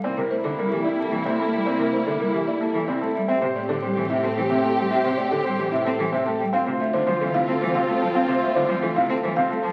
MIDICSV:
0, 0, Header, 1, 7, 480
1, 0, Start_track
1, 0, Tempo, 540541
1, 36, Time_signature, 3, 2, 24, 8
1, 8635, End_track
2, 0, Start_track
2, 0, Title_t, "Marimba"
2, 0, Program_c, 0, 12
2, 34, Note_on_c, 0, 74, 86
2, 192, Note_off_c, 0, 74, 0
2, 274, Note_on_c, 0, 72, 71
2, 392, Note_on_c, 0, 69, 83
2, 432, Note_off_c, 0, 72, 0
2, 551, Note_off_c, 0, 69, 0
2, 634, Note_on_c, 0, 67, 61
2, 749, Note_on_c, 0, 74, 82
2, 792, Note_off_c, 0, 67, 0
2, 910, Note_off_c, 0, 74, 0
2, 993, Note_on_c, 0, 69, 60
2, 1113, Note_on_c, 0, 74, 74
2, 1152, Note_off_c, 0, 69, 0
2, 1271, Note_off_c, 0, 74, 0
2, 1357, Note_on_c, 0, 76, 60
2, 1476, Note_on_c, 0, 74, 93
2, 1513, Note_off_c, 0, 76, 0
2, 1632, Note_off_c, 0, 74, 0
2, 1712, Note_on_c, 0, 72, 69
2, 1834, Note_on_c, 0, 69, 88
2, 1871, Note_off_c, 0, 72, 0
2, 1992, Note_off_c, 0, 69, 0
2, 2078, Note_on_c, 0, 67, 64
2, 2200, Note_on_c, 0, 74, 79
2, 2233, Note_off_c, 0, 67, 0
2, 2354, Note_off_c, 0, 74, 0
2, 2435, Note_on_c, 0, 69, 64
2, 2556, Note_on_c, 0, 74, 84
2, 2592, Note_off_c, 0, 69, 0
2, 2712, Note_off_c, 0, 74, 0
2, 2797, Note_on_c, 0, 76, 62
2, 2908, Note_off_c, 0, 76, 0
2, 2918, Note_on_c, 0, 76, 87
2, 3073, Note_off_c, 0, 76, 0
2, 3159, Note_on_c, 0, 74, 68
2, 3278, Note_on_c, 0, 69, 88
2, 3313, Note_off_c, 0, 74, 0
2, 3433, Note_off_c, 0, 69, 0
2, 3518, Note_on_c, 0, 67, 68
2, 3637, Note_on_c, 0, 76, 88
2, 3673, Note_off_c, 0, 67, 0
2, 3793, Note_off_c, 0, 76, 0
2, 3882, Note_on_c, 0, 69, 63
2, 3999, Note_on_c, 0, 76, 78
2, 4035, Note_off_c, 0, 69, 0
2, 4154, Note_off_c, 0, 76, 0
2, 4237, Note_on_c, 0, 79, 64
2, 4357, Note_on_c, 0, 76, 98
2, 4393, Note_off_c, 0, 79, 0
2, 4513, Note_off_c, 0, 76, 0
2, 4596, Note_on_c, 0, 74, 78
2, 4721, Note_on_c, 0, 69, 97
2, 4752, Note_off_c, 0, 74, 0
2, 4874, Note_off_c, 0, 69, 0
2, 4962, Note_on_c, 0, 67, 65
2, 5081, Note_on_c, 0, 76, 90
2, 5115, Note_off_c, 0, 67, 0
2, 5234, Note_off_c, 0, 76, 0
2, 5318, Note_on_c, 0, 69, 74
2, 5441, Note_on_c, 0, 76, 84
2, 5473, Note_off_c, 0, 69, 0
2, 5594, Note_off_c, 0, 76, 0
2, 5682, Note_on_c, 0, 79, 66
2, 5801, Note_on_c, 0, 77, 88
2, 5835, Note_off_c, 0, 79, 0
2, 5954, Note_off_c, 0, 77, 0
2, 6039, Note_on_c, 0, 76, 74
2, 6159, Note_on_c, 0, 72, 100
2, 6193, Note_off_c, 0, 76, 0
2, 6313, Note_off_c, 0, 72, 0
2, 6401, Note_on_c, 0, 69, 70
2, 6520, Note_on_c, 0, 77, 95
2, 6554, Note_off_c, 0, 69, 0
2, 6674, Note_off_c, 0, 77, 0
2, 6760, Note_on_c, 0, 72, 67
2, 6881, Note_on_c, 0, 77, 93
2, 6914, Note_off_c, 0, 72, 0
2, 7034, Note_off_c, 0, 77, 0
2, 7118, Note_on_c, 0, 81, 73
2, 7236, Note_on_c, 0, 77, 101
2, 7273, Note_off_c, 0, 81, 0
2, 7393, Note_off_c, 0, 77, 0
2, 7478, Note_on_c, 0, 76, 78
2, 7595, Note_on_c, 0, 72, 100
2, 7633, Note_off_c, 0, 76, 0
2, 7752, Note_off_c, 0, 72, 0
2, 7837, Note_on_c, 0, 69, 72
2, 7958, Note_on_c, 0, 77, 103
2, 7993, Note_off_c, 0, 69, 0
2, 8113, Note_off_c, 0, 77, 0
2, 8198, Note_on_c, 0, 72, 72
2, 8315, Note_on_c, 0, 77, 92
2, 8353, Note_off_c, 0, 72, 0
2, 8472, Note_off_c, 0, 77, 0
2, 8555, Note_on_c, 0, 81, 76
2, 8635, Note_off_c, 0, 81, 0
2, 8635, End_track
3, 0, Start_track
3, 0, Title_t, "Grand piano"
3, 0, Program_c, 1, 0
3, 36, Note_on_c, 1, 60, 67
3, 157, Note_on_c, 1, 70, 72
3, 193, Note_off_c, 1, 60, 0
3, 313, Note_off_c, 1, 70, 0
3, 396, Note_on_c, 1, 62, 68
3, 517, Note_on_c, 1, 70, 73
3, 553, Note_off_c, 1, 62, 0
3, 673, Note_off_c, 1, 70, 0
3, 755, Note_on_c, 1, 64, 76
3, 876, Note_on_c, 1, 69, 61
3, 912, Note_off_c, 1, 64, 0
3, 1032, Note_off_c, 1, 69, 0
3, 1115, Note_on_c, 1, 60, 72
3, 1235, Note_on_c, 1, 69, 62
3, 1272, Note_off_c, 1, 60, 0
3, 1392, Note_off_c, 1, 69, 0
3, 1474, Note_on_c, 1, 60, 65
3, 1594, Note_on_c, 1, 70, 70
3, 1632, Note_off_c, 1, 60, 0
3, 1752, Note_off_c, 1, 70, 0
3, 1834, Note_on_c, 1, 62, 65
3, 1953, Note_on_c, 1, 70, 66
3, 1992, Note_off_c, 1, 62, 0
3, 2111, Note_off_c, 1, 70, 0
3, 2193, Note_on_c, 1, 64, 73
3, 2314, Note_on_c, 1, 69, 63
3, 2352, Note_off_c, 1, 64, 0
3, 2472, Note_off_c, 1, 69, 0
3, 2554, Note_on_c, 1, 60, 66
3, 2674, Note_on_c, 1, 69, 65
3, 2712, Note_off_c, 1, 60, 0
3, 2832, Note_off_c, 1, 69, 0
3, 2914, Note_on_c, 1, 60, 66
3, 3034, Note_on_c, 1, 72, 73
3, 3072, Note_off_c, 1, 60, 0
3, 3192, Note_off_c, 1, 72, 0
3, 3275, Note_on_c, 1, 62, 76
3, 3395, Note_on_c, 1, 72, 64
3, 3432, Note_off_c, 1, 62, 0
3, 3552, Note_off_c, 1, 72, 0
3, 3634, Note_on_c, 1, 64, 72
3, 3755, Note_on_c, 1, 69, 69
3, 3792, Note_off_c, 1, 64, 0
3, 3912, Note_off_c, 1, 69, 0
3, 3994, Note_on_c, 1, 60, 75
3, 4113, Note_on_c, 1, 69, 65
3, 4152, Note_off_c, 1, 60, 0
3, 4271, Note_off_c, 1, 69, 0
3, 4356, Note_on_c, 1, 60, 68
3, 4474, Note_on_c, 1, 72, 70
3, 4512, Note_off_c, 1, 60, 0
3, 4632, Note_off_c, 1, 72, 0
3, 4715, Note_on_c, 1, 62, 67
3, 4835, Note_on_c, 1, 72, 73
3, 4872, Note_off_c, 1, 62, 0
3, 4992, Note_off_c, 1, 72, 0
3, 5075, Note_on_c, 1, 64, 73
3, 5195, Note_on_c, 1, 69, 66
3, 5232, Note_off_c, 1, 64, 0
3, 5352, Note_off_c, 1, 69, 0
3, 5436, Note_on_c, 1, 60, 75
3, 5557, Note_on_c, 1, 69, 74
3, 5592, Note_off_c, 1, 60, 0
3, 5713, Note_off_c, 1, 69, 0
3, 5796, Note_on_c, 1, 60, 74
3, 5916, Note_on_c, 1, 72, 75
3, 5952, Note_off_c, 1, 60, 0
3, 6073, Note_off_c, 1, 72, 0
3, 6158, Note_on_c, 1, 62, 70
3, 6277, Note_on_c, 1, 72, 79
3, 6313, Note_off_c, 1, 62, 0
3, 6433, Note_off_c, 1, 72, 0
3, 6516, Note_on_c, 1, 64, 83
3, 6636, Note_on_c, 1, 69, 70
3, 6672, Note_off_c, 1, 64, 0
3, 6793, Note_off_c, 1, 69, 0
3, 6877, Note_on_c, 1, 60, 78
3, 6998, Note_on_c, 1, 69, 76
3, 7033, Note_off_c, 1, 60, 0
3, 7153, Note_off_c, 1, 69, 0
3, 7237, Note_on_c, 1, 60, 73
3, 7356, Note_on_c, 1, 72, 83
3, 7393, Note_off_c, 1, 60, 0
3, 7513, Note_off_c, 1, 72, 0
3, 7596, Note_on_c, 1, 62, 74
3, 7715, Note_on_c, 1, 72, 75
3, 7753, Note_off_c, 1, 62, 0
3, 7872, Note_off_c, 1, 72, 0
3, 7958, Note_on_c, 1, 64, 81
3, 8075, Note_on_c, 1, 69, 71
3, 8113, Note_off_c, 1, 64, 0
3, 8232, Note_off_c, 1, 69, 0
3, 8316, Note_on_c, 1, 60, 83
3, 8438, Note_on_c, 1, 69, 73
3, 8472, Note_off_c, 1, 60, 0
3, 8593, Note_off_c, 1, 69, 0
3, 8635, End_track
4, 0, Start_track
4, 0, Title_t, "French horn"
4, 0, Program_c, 2, 60
4, 34, Note_on_c, 2, 64, 74
4, 2760, Note_off_c, 2, 64, 0
4, 2915, Note_on_c, 2, 67, 70
4, 5641, Note_off_c, 2, 67, 0
4, 5799, Note_on_c, 2, 65, 72
4, 8522, Note_off_c, 2, 65, 0
4, 8635, End_track
5, 0, Start_track
5, 0, Title_t, "String section"
5, 0, Program_c, 3, 48
5, 34, Note_on_c, 3, 64, 73
5, 35, Note_on_c, 3, 58, 76
5, 2760, Note_off_c, 3, 58, 0
5, 2760, Note_off_c, 3, 64, 0
5, 2916, Note_on_c, 3, 67, 81
5, 2917, Note_on_c, 3, 60, 74
5, 5641, Note_off_c, 3, 60, 0
5, 5641, Note_off_c, 3, 67, 0
5, 5794, Note_on_c, 3, 65, 78
5, 5797, Note_on_c, 3, 60, 80
5, 8520, Note_off_c, 3, 65, 0
5, 8521, Note_off_c, 3, 60, 0
5, 8635, End_track
6, 0, Start_track
6, 0, Title_t, "Cello"
6, 0, Program_c, 4, 42
6, 33, Note_on_c, 4, 58, 86
6, 124, Note_off_c, 4, 58, 0
6, 155, Note_on_c, 4, 48, 69
6, 245, Note_off_c, 4, 48, 0
6, 271, Note_on_c, 4, 57, 68
6, 363, Note_off_c, 4, 57, 0
6, 391, Note_on_c, 4, 50, 81
6, 483, Note_off_c, 4, 50, 0
6, 513, Note_on_c, 4, 55, 64
6, 604, Note_off_c, 4, 55, 0
6, 633, Note_on_c, 4, 52, 65
6, 725, Note_off_c, 4, 52, 0
6, 873, Note_on_c, 4, 58, 66
6, 964, Note_off_c, 4, 58, 0
6, 990, Note_on_c, 4, 52, 68
6, 1083, Note_off_c, 4, 52, 0
6, 1111, Note_on_c, 4, 48, 74
6, 1203, Note_off_c, 4, 48, 0
6, 1231, Note_on_c, 4, 57, 75
6, 1323, Note_off_c, 4, 57, 0
6, 1354, Note_on_c, 4, 55, 62
6, 1445, Note_off_c, 4, 55, 0
6, 1472, Note_on_c, 4, 58, 86
6, 1564, Note_off_c, 4, 58, 0
6, 1589, Note_on_c, 4, 48, 70
6, 1682, Note_off_c, 4, 48, 0
6, 1710, Note_on_c, 4, 57, 62
6, 1803, Note_off_c, 4, 57, 0
6, 1831, Note_on_c, 4, 50, 86
6, 1923, Note_off_c, 4, 50, 0
6, 1948, Note_on_c, 4, 55, 68
6, 2041, Note_off_c, 4, 55, 0
6, 2072, Note_on_c, 4, 52, 64
6, 2164, Note_off_c, 4, 52, 0
6, 2312, Note_on_c, 4, 58, 68
6, 2404, Note_off_c, 4, 58, 0
6, 2434, Note_on_c, 4, 52, 74
6, 2525, Note_off_c, 4, 52, 0
6, 2554, Note_on_c, 4, 48, 74
6, 2645, Note_off_c, 4, 48, 0
6, 2677, Note_on_c, 4, 57, 72
6, 2767, Note_off_c, 4, 57, 0
6, 2795, Note_on_c, 4, 55, 71
6, 2886, Note_off_c, 4, 55, 0
6, 2916, Note_on_c, 4, 60, 91
6, 3006, Note_off_c, 4, 60, 0
6, 3036, Note_on_c, 4, 48, 72
6, 3126, Note_off_c, 4, 48, 0
6, 3160, Note_on_c, 4, 57, 69
6, 3249, Note_off_c, 4, 57, 0
6, 3279, Note_on_c, 4, 50, 86
6, 3368, Note_off_c, 4, 50, 0
6, 3401, Note_on_c, 4, 55, 75
6, 3489, Note_off_c, 4, 55, 0
6, 3523, Note_on_c, 4, 52, 71
6, 3611, Note_off_c, 4, 52, 0
6, 3639, Note_on_c, 4, 48, 93
6, 3728, Note_off_c, 4, 48, 0
6, 3760, Note_on_c, 4, 60, 67
6, 3849, Note_off_c, 4, 60, 0
6, 3881, Note_on_c, 4, 52, 76
6, 3969, Note_off_c, 4, 52, 0
6, 3997, Note_on_c, 4, 48, 80
6, 4087, Note_off_c, 4, 48, 0
6, 4121, Note_on_c, 4, 57, 71
6, 4210, Note_off_c, 4, 57, 0
6, 4240, Note_on_c, 4, 55, 70
6, 4329, Note_off_c, 4, 55, 0
6, 4359, Note_on_c, 4, 60, 91
6, 4448, Note_off_c, 4, 60, 0
6, 4483, Note_on_c, 4, 48, 79
6, 4571, Note_off_c, 4, 48, 0
6, 4606, Note_on_c, 4, 57, 74
6, 4692, Note_off_c, 4, 57, 0
6, 4721, Note_on_c, 4, 50, 76
6, 4810, Note_off_c, 4, 50, 0
6, 4840, Note_on_c, 4, 55, 70
6, 4929, Note_off_c, 4, 55, 0
6, 4963, Note_on_c, 4, 52, 67
6, 5051, Note_off_c, 4, 52, 0
6, 5083, Note_on_c, 4, 48, 102
6, 5170, Note_off_c, 4, 48, 0
6, 5204, Note_on_c, 4, 60, 79
6, 5291, Note_off_c, 4, 60, 0
6, 5324, Note_on_c, 4, 52, 76
6, 5411, Note_off_c, 4, 52, 0
6, 5442, Note_on_c, 4, 48, 79
6, 5530, Note_off_c, 4, 48, 0
6, 5564, Note_on_c, 4, 57, 79
6, 5651, Note_off_c, 4, 57, 0
6, 5686, Note_on_c, 4, 55, 71
6, 5773, Note_off_c, 4, 55, 0
6, 5801, Note_on_c, 4, 60, 90
6, 5889, Note_off_c, 4, 60, 0
6, 5922, Note_on_c, 4, 48, 75
6, 6010, Note_off_c, 4, 48, 0
6, 6038, Note_on_c, 4, 57, 75
6, 6128, Note_off_c, 4, 57, 0
6, 6158, Note_on_c, 4, 50, 88
6, 6248, Note_off_c, 4, 50, 0
6, 6278, Note_on_c, 4, 53, 73
6, 6367, Note_off_c, 4, 53, 0
6, 6397, Note_on_c, 4, 52, 74
6, 6487, Note_off_c, 4, 52, 0
6, 6520, Note_on_c, 4, 48, 92
6, 6609, Note_off_c, 4, 48, 0
6, 6639, Note_on_c, 4, 60, 82
6, 6728, Note_off_c, 4, 60, 0
6, 6761, Note_on_c, 4, 52, 87
6, 6849, Note_off_c, 4, 52, 0
6, 6877, Note_on_c, 4, 48, 94
6, 6967, Note_off_c, 4, 48, 0
6, 7000, Note_on_c, 4, 57, 81
6, 7089, Note_off_c, 4, 57, 0
6, 7118, Note_on_c, 4, 53, 78
6, 7207, Note_off_c, 4, 53, 0
6, 7234, Note_on_c, 4, 60, 95
6, 7325, Note_off_c, 4, 60, 0
6, 7354, Note_on_c, 4, 48, 83
6, 7445, Note_off_c, 4, 48, 0
6, 7476, Note_on_c, 4, 57, 77
6, 7566, Note_off_c, 4, 57, 0
6, 7599, Note_on_c, 4, 50, 87
6, 7688, Note_off_c, 4, 50, 0
6, 7714, Note_on_c, 4, 53, 84
6, 7805, Note_off_c, 4, 53, 0
6, 7831, Note_on_c, 4, 52, 74
6, 7923, Note_off_c, 4, 52, 0
6, 7955, Note_on_c, 4, 48, 108
6, 8046, Note_off_c, 4, 48, 0
6, 8075, Note_on_c, 4, 60, 81
6, 8166, Note_off_c, 4, 60, 0
6, 8199, Note_on_c, 4, 52, 84
6, 8288, Note_off_c, 4, 52, 0
6, 8319, Note_on_c, 4, 48, 92
6, 8408, Note_off_c, 4, 48, 0
6, 8437, Note_on_c, 4, 57, 86
6, 8527, Note_off_c, 4, 57, 0
6, 8555, Note_on_c, 4, 53, 81
6, 8635, Note_off_c, 4, 53, 0
6, 8635, End_track
7, 0, Start_track
7, 0, Title_t, "Double bass section"
7, 0, Program_c, 5, 48
7, 36, Note_on_c, 5, 36, 72
7, 2785, Note_off_c, 5, 36, 0
7, 2916, Note_on_c, 5, 45, 72
7, 5665, Note_off_c, 5, 45, 0
7, 5799, Note_on_c, 5, 38, 80
7, 8546, Note_off_c, 5, 38, 0
7, 8635, End_track
0, 0, End_of_file